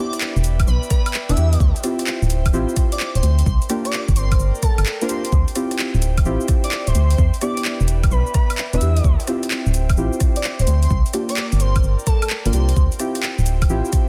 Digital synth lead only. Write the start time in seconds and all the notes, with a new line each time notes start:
Already playing: D5
0.67 B4
0.90 B4
1.29 E5
2.92 D5
3.15 C5
3.38 C5
3.85 D5
4.16 C5
4.63 A4
4.78 A4
5.02 C5
6.64 D5
6.88 C5
7.11 C5
7.42 D5
8.11 B4
8.35 B4
8.74 E5
10.37 D5
10.59 C5
10.83 C5
11.29 D5
11.60 C5
12.06 A4
12.22 A4
12.45 C5